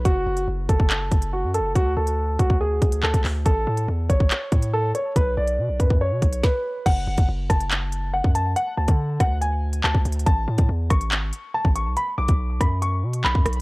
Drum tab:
CC |------------------------------------------------|------------------------------------------------|------------------------------------------------|------------------------------------------------|
HH |x--------x--------x-----x-----x--x--------x-----|x--------x--------x-----------x--x-----x--o-----|x--------x--------x-----x-----x--x--------x-----|x--------x--------x-----------x--x--------------|
CP |------------------------x-----------------------|------------------------------------x-----x-----|------------------------x-----------------------|------------------------------------------------|
SD |------------------------------------------------|------------------------------------------------|------------------------------------------------|------------------------------------o-----------|
BD |o-----------------o--o--------o-----------------|o-----------------o--o--------o--------o--------|o-----------------o--o--------o-----------------|o-----------------o--o--------o-----o-----------|

CC |x-----------------------------------------------|------------------------------------------------|------------------------------------------------|------------------------------------------------|
HH |x--------x--------x--x--x-----x-----------x-----|x--------x--------x-----x--------x--------x-x-x-|x--------x--------x--x--x-----x-----------x-----|x--------x--------x-----x--------x--------x-x---|
CP |------------------------x-----------------------|------------------------------------x-----------|------------------------x-----------------------|------------------------------------x-----------|
SD |------------------r-----------------------------|------------------r-----------------------------|------------------r-----------------------------|------------------r-----------------------r-----|
BD |o--------o--------o--------------------o--------|---------o--------o--------------------o--------|o--------o--------o--------------------o--------|---------o--------o--------------------o--------|